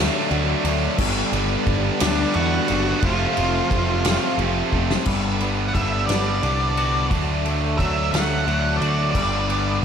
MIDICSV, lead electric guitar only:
0, 0, Header, 1, 2, 480
1, 0, Start_track
1, 0, Key_signature, 1, "major"
1, 0, Tempo, 681044
1, 691, Time_signature, 6, 3, 24, 8
1, 6942, End_track
2, 0, Start_track
2, 0, Title_t, "Lead electric guitar"
2, 0, Program_c, 0, 29
2, 1419, Note_on_c, 0, 74, 106
2, 1426, Note_on_c, 0, 62, 82
2, 1642, Note_off_c, 0, 62, 0
2, 1655, Note_on_c, 0, 78, 124
2, 1658, Note_on_c, 0, 66, 90
2, 1662, Note_off_c, 0, 74, 0
2, 2106, Note_off_c, 0, 66, 0
2, 2147, Note_off_c, 0, 78, 0
2, 2150, Note_on_c, 0, 65, 84
2, 2152, Note_on_c, 0, 77, 99
2, 3072, Note_off_c, 0, 65, 0
2, 3072, Note_off_c, 0, 77, 0
2, 4006, Note_on_c, 0, 78, 72
2, 4044, Note_on_c, 0, 76, 98
2, 4052, Note_off_c, 0, 78, 0
2, 4272, Note_off_c, 0, 76, 0
2, 4275, Note_on_c, 0, 74, 105
2, 4975, Note_off_c, 0, 74, 0
2, 5484, Note_on_c, 0, 76, 90
2, 5710, Note_off_c, 0, 76, 0
2, 5718, Note_on_c, 0, 78, 98
2, 6182, Note_on_c, 0, 74, 81
2, 6219, Note_off_c, 0, 78, 0
2, 6414, Note_off_c, 0, 74, 0
2, 6422, Note_on_c, 0, 74, 81
2, 6889, Note_off_c, 0, 74, 0
2, 6942, End_track
0, 0, End_of_file